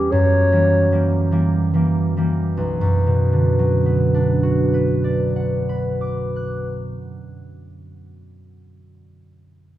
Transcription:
0.00 0.18 E2 medium
0.00 0.51 G3 soft
0.00 2.62 C#4 soft
0.00 0.13 G4 medium
0.11 2.62 F#2 soft
0.11 1.31 C#5 medium
0.52 0.91 E3 soft
0.52 0.91 G3 soft
0.52 0.91 A#3 soft
0.92 1.30 E3 soft
0.92 1.31 G3 soft
0.92 1.31 A#3 soft
1.31 1.72 E3 soft
1.31 1.73 G3 soft
1.31 1.74 A#3 soft
1.73 2.16 E3 soft
1.73 2.16 G3 soft
1.73 2.17 A#3 soft
2.17 2.62 E3 soft
2.17 2.62 G3 soft
2.17 2.63 A#3 soft
2.55 6.92 B1 soft
2.55 6.89 B4 soft
2.81 7.15 F#2 soft
3.07 7.41 B2 soft
3.33 7.67 D3 soft
3.59 7.93 F#3 soft
3.86 8.20 B3 soft
4.14 8.49 D4 soft
4.43 8.64 F#4 soft
4.74 8.65 B4 soft
5.04 8.64 D5 soft
5.36 8.65 F#5 soft
5.69 8.65 B5 soft
6.01 8.64 D6 soft
6.36 8.65 F#6 soft

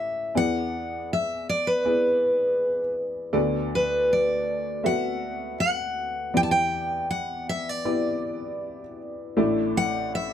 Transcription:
0.00 0.31 A1 medium
0.00 0.31 A2 medium
0.00 0.38 A3 medium
0.00 0.35 E4 medium
0.00 0.37 G4 soft
0.00 0.37 C#5 medium
0.00 0.37 E5 medium
0.35 3.30 E2 medium
0.35 3.31 E3 medium
0.35 1.29 B3 medium
0.35 1.29 E4 medium
0.35 1.29 G#4 medium
0.35 1.29 D5 medium
0.35 1.13 F#5 loud
1.13 1.47 E5 medium
1.49 1.68 D5 medium
1.67 2.94 B4 medium
1.85 2.79 B3 medium
1.85 2.79 E4 medium
1.85 2.79 G#4 medium
1.85 2.79 D5 medium
3.33 6.30 D2 medium
3.33 6.29 D3 medium
3.33 4.27 B3 medium
3.33 4.27 F#4 medium
3.33 4.27 A4 medium
3.33 4.27 D5 medium
3.75 4.12 B4 medium
4.13 4.86 D5 medium
4.83 5.77 B3 medium
4.83 5.78 F#4 medium
4.83 5.78 A4 medium
4.83 5.78 E5 medium
4.83 5.59 F#5 medium
5.60 6.36 F#5 medium
6.34 9.34 E2 medium
6.34 9.34 E3 medium
6.34 7.28 B3 medium
6.34 7.28 E4 medium
6.34 7.28 G4 medium
6.34 7.28 D5 medium
6.34 6.43 G5 loud
6.43 6.49 A5 medium
6.51 7.10 G5 loud
7.11 7.49 F#5 medium
7.49 7.69 E5 medium
7.69 9.01 D5 medium
7.85 8.81 B3 medium
7.85 8.81 E4 medium
7.85 8.81 G4 medium
7.85 8.81 D5 medium
9.37 10.33 A1 medium
9.37 10.33 A2 medium
9.37 10.32 A3 medium
9.37 10.32 D4 medium
9.37 10.32 E4 medium
9.37 10.32 D5 medium
9.77 10.15 F#5 medium
10.15 10.33 E5 medium

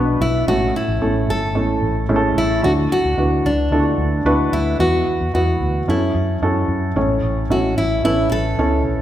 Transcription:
0.00 0.16 B1 medium
0.00 0.49 B2 soft
0.00 0.50 B3 medium
0.00 0.17 D4 medium
0.00 0.50 D4 medium
0.00 0.50 F#4 medium
0.00 0.49 B4 medium
0.21 0.43 B1 medium
0.21 0.46 E4 medium
0.47 0.70 A1 medium
0.47 1.25 A2 medium
0.47 0.93 A3 medium
0.47 0.93 C#4 soft
0.47 0.93 E4 soft
0.47 0.73 F#4 medium
0.47 0.93 A4 medium
0.76 1.31 E4 medium
0.88 0.99 A1 medium
1.02 1.24 A1 medium
1.02 1.47 A3 medium
1.02 1.47 C#4 soft
1.02 1.47 E4 soft
1.02 1.47 A4 medium
1.28 1.55 G1 medium
1.28 2.38 A4 medium
1.55 1.77 A1 medium
1.55 2.01 A3 medium
1.55 2.01 C#4 medium
1.55 2.01 E4 medium
1.55 2.01 A4 medium
1.83 2.05 A1 medium
2.09 2.32 A1 medium
2.09 2.55 A3 medium
2.09 2.55 C#4 medium
2.09 2.55 E4 medium
2.09 2.16 G#4 medium
2.16 2.58 A4 medium
2.37 2.59 A1 medium
2.37 2.63 E4 medium
2.63 2.86 D2 medium
2.63 3.41 D3 medium
2.63 3.09 D4 medium
2.63 3.09 E4 medium
2.63 3.09 F#4 medium
2.63 2.71 F#4 medium
2.63 3.09 A4 medium
2.92 3.47 F#4 medium
3.04 3.15 D2 medium
3.17 3.40 D2 medium
3.17 3.63 D4 medium
3.17 3.63 E4 soft
3.17 3.64 F#4 medium
3.17 3.64 B4 medium
3.45 3.67 C#2 medium
3.45 4.57 D4 medium
3.71 3.94 D2 medium
3.71 4.18 D4 medium
3.71 4.17 E4 soft
3.71 3.79 F4 soft
3.71 4.18 A4 medium
3.79 4.21 F#4 medium
3.98 4.21 D2 medium
4.25 4.48 D2 medium
4.25 4.71 D4 medium
4.25 4.72 E4 medium
4.25 4.71 F#4 medium
4.25 4.72 B4 medium
4.52 4.75 D2 medium
4.52 4.78 E4 medium
4.79 5.02 E2 loud
4.79 5.57 E3 soft
4.79 5.25 B3 medium
4.79 5.25 E4 soft
4.79 5.25 F#4 medium
4.79 5.34 F#4 medium
4.79 5.26 B4 medium
5.21 5.32 E2 medium
5.34 5.56 E2 medium
5.34 5.80 B3 medium
5.34 5.80 E4 medium
5.34 5.80 F#4 medium
5.34 5.90 F#4 medium
5.34 5.80 B4 medium
5.60 5.83 D2 medium
5.88 6.10 F#2 medium
5.88 6.34 C#4 medium
5.88 6.34 E4 medium
5.88 6.66 E4 medium
5.88 6.34 F#4 medium
5.88 6.34 A4 medium
6.15 6.37 F#2 medium
6.42 6.64 F#2 medium
6.42 6.88 C#4 medium
6.42 6.88 E4 medium
6.42 6.88 F#4 medium
6.42 6.88 A4 medium
6.68 6.91 F#2 medium
6.96 7.18 A1 medium
6.96 7.74 A2 medium
6.96 7.42 C#4 medium
6.96 7.42 E4 medium
6.96 7.42 A4 medium
6.96 7.42 C#5 medium
7.23 7.45 A1 medium
7.50 7.72 A1 medium
7.50 7.96 C#4 medium
7.50 7.96 E4 medium
7.50 7.77 F#4 medium
7.50 7.96 A4 soft
7.50 7.96 E5 medium
7.78 8.00 A1 medium
7.78 8.03 E4 medium
8.04 8.26 A1 medium
8.04 8.50 C#4 medium
8.04 8.50 E4 medium
8.04 8.30 E4 medium
8.04 8.50 A4 medium
8.04 8.50 B4 medium
8.31 8.54 A1 medium
8.31 8.82 A4 medium
8.58 8.85 C#2 medium
8.58 9.02 C#4 medium
8.58 9.02 E4 medium
8.58 9.02 A4 medium
8.58 9.02 C#5 medium
8.85 9.02 A#1 medium

